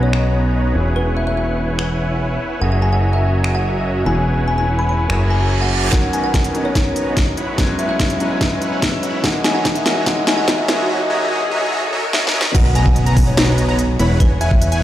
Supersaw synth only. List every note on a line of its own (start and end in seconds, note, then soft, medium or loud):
0.00 0.73 B3 medium
0.00 0.73 B4 medium
0.00 0.73 C#5 medium
0.00 0.73 D#5 medium
0.00 0.73 A#5 medium
0.75 2.59 E4 medium
0.75 2.59 B4 medium
0.75 2.59 C#5 medium
0.75 2.59 F#5 medium
0.75 2.59 G#5 medium
2.62 4.04 F#4 medium
2.62 4.04 C#5 medium
2.62 4.04 D#5 medium
2.62 4.04 E5 medium
2.62 4.04 G#5 medium
2.62 4.04 A#5 medium
4.06 5.07 E4 medium
4.06 5.07 B4 medium
4.06 5.07 C#5 medium
4.06 5.07 F#5 medium
4.06 5.07 G#5 medium
5.10 5.90 F#4 medium
5.10 5.90 C#5 medium
5.10 5.90 E5 medium
5.10 5.90 G#5 medium
5.10 5.90 A#5 medium
5.93 6.02 B3 medium
5.93 6.02 B4 medium
5.93 6.02 C#5 medium
5.93 6.02 D#5 medium
5.93 6.02 A#5 medium
6.13 6.42 B3 medium
6.13 6.42 B4 medium
6.13 6.42 C#5 medium
6.13 6.42 D#5 medium
6.13 6.42 A#5 medium
6.44 6.73 B3 loud
6.44 6.73 B4 medium
6.44 6.73 C#5 medium
6.44 6.73 D#5 medium
6.44 6.73 A#5 loud
6.75 7.04 B3 medium
6.75 7.04 B4 medium
6.75 7.04 C#5 medium
6.75 7.04 D#5 medium
6.75 7.04 A#5 medium
7.06 7.16 B3 medium
7.06 7.16 B4 medium
7.06 7.16 C#5 medium
7.06 7.16 D#5 medium
7.06 7.16 A#5 medium
7.38 7.56 E4 medium
7.38 7.56 B4 medium
7.38 7.56 C#5 medium
7.38 7.56 F#5 medium
7.38 7.56 B5 medium
7.58 7.68 E4 medium
7.58 7.68 B4 medium
7.58 7.68 C#5 medium
7.58 7.68 F#5 medium
7.58 7.68 G#5 medium
7.79 8.07 E4 medium
7.79 8.07 B4 medium
7.79 8.07 C#5 medium
7.79 8.07 F#5 medium
7.79 8.07 G#5 medium
8.10 8.38 E4 loud
8.10 8.38 B4 medium
8.10 8.38 C#5 medium
8.10 8.38 F#5 medium
8.10 8.38 G#5 loud
8.41 8.69 E4 medium
8.41 8.69 B4 medium
8.41 8.69 C#5 medium
8.41 8.69 F#5 medium
8.41 8.69 G#5 loud
8.72 8.82 E4 medium
8.72 8.82 B4 medium
8.72 8.82 C#5 medium
8.72 8.82 F#5 medium
8.72 8.82 G#5 medium
9.03 9.21 E4 medium
9.03 9.21 B4 medium
9.03 9.21 C#5 medium
9.03 9.21 F#5 medium
9.03 9.21 B5 medium
9.24 9.33 F#4 medium
9.24 9.33 C#5 medium
9.24 9.33 D#5 medium
9.24 9.33 E5 medium
9.24 9.33 G#5 medium
9.24 9.33 A#5 medium
9.44 9.73 F#4 medium
9.44 9.73 C#5 medium
9.44 9.73 D#5 medium
9.44 9.73 E5 medium
9.44 9.73 G#5 medium
9.44 9.73 A#5 medium
9.75 10.04 F#4 medium
9.75 10.04 C#5 medium
9.75 10.04 D#5 medium
9.75 10.04 E5 medium
9.75 10.04 G#5 medium
9.75 10.04 A#5 loud
10.06 10.16 F#4 medium
10.06 10.16 C#5 medium
10.06 10.16 D#5 medium
10.06 10.16 E5 medium
10.06 10.16 G#5 medium
10.06 10.16 A#5 medium
10.27 10.56 F#4 medium
10.27 10.56 C#5 medium
10.27 10.56 D#5 medium
10.27 10.56 E5 medium
10.27 10.56 G#5 medium
10.27 10.56 A#5 medium
10.58 10.87 F#4 medium
10.58 10.87 C#5 medium
10.58 10.87 D#5 medium
10.58 10.87 E5 medium
10.58 10.87 G#5 medium
10.58 10.87 A#5 loud
10.89 10.99 F#4 medium
10.89 10.99 C#5 medium
10.89 10.99 D#5 medium
10.89 10.99 E5 medium
10.89 10.99 G#5 medium
10.89 10.99 A#5 medium
11.10 11.29 F#4 medium
11.10 11.29 C#5 medium
11.10 11.29 D#5 medium
11.10 11.29 E5 medium
11.10 11.29 G#5 medium
11.10 11.29 A#5 loud
11.31 11.40 F#4 medium
11.31 11.40 C#5 medium
11.31 11.40 D#5 medium
11.31 11.40 E5 medium
11.31 11.40 G#5 medium
11.31 11.40 A#5 medium
11.51 11.70 F#4 medium
11.51 11.70 C#5 medium
11.51 11.70 D#5 medium
11.51 11.70 E5 medium
11.51 11.70 G#5 medium
11.51 11.70 A#5 loud
11.72 11.82 F#4 medium
11.72 11.82 C#5 medium
11.72 11.82 D#5 medium
11.72 11.82 E5 medium
11.72 11.82 G#5 medium
11.72 11.82 A#5 medium
11.93 12.02 F#4 medium
11.93 12.02 C#5 medium
11.93 12.02 D#5 medium
11.93 12.02 E5 medium
11.93 12.02 G#5 medium
11.93 12.02 A#5 medium
12.13 12.23 F#4 medium
12.13 12.23 C#5 medium
12.13 12.23 D#5 medium
12.13 12.23 E5 medium
12.13 12.23 G#5 medium
12.13 12.23 A#5 medium
12.34 12.44 F#4 medium
12.34 12.44 C#5 medium
12.34 12.44 D#5 medium
12.34 12.44 E5 medium
12.34 12.44 G#5 medium
12.34 12.44 A#5 loud
12.55 12.65 B3 medium
12.55 12.65 B4 medium
12.55 12.65 C#5 medium
12.55 12.65 D#5 medium
12.55 12.65 A#5 medium
12.75 13.04 B3 medium
12.75 13.04 B4 medium
12.75 13.04 C#5 medium
12.75 13.04 D#5 medium
12.75 13.04 A#5 loud
13.06 13.35 B3 loud
13.06 13.35 B4 medium
13.06 13.35 C#5 medium
13.06 13.35 D#5 medium
13.06 13.35 A#5 loud
13.37 13.66 B3 medium
13.37 13.66 B4 medium
13.37 13.66 C#5 medium
13.37 13.66 D#5 medium
13.37 13.66 A#5 loud
13.69 13.78 B3 medium
13.69 13.78 B4 medium
13.69 13.78 C#5 medium
13.69 13.78 D#5 medium
13.69 13.78 A#5 medium
13.99 14.18 E4 medium
13.99 14.18 B4 medium
13.99 14.18 C#5 medium
13.99 14.18 F#5 medium
13.99 14.18 B5 medium
14.20 14.30 E4 medium
14.20 14.30 B4 medium
14.20 14.30 C#5 medium
14.20 14.30 F#5 medium
14.20 14.30 G#5 medium
14.41 14.69 E4 medium
14.41 14.69 B4 medium
14.41 14.69 C#5 medium
14.41 14.69 F#5 medium
14.41 14.69 G#5 loud
14.72 14.83 E4 loud
14.72 14.83 B4 medium
14.72 14.83 C#5 medium
14.72 14.83 F#5 medium
14.72 14.83 G#5 loud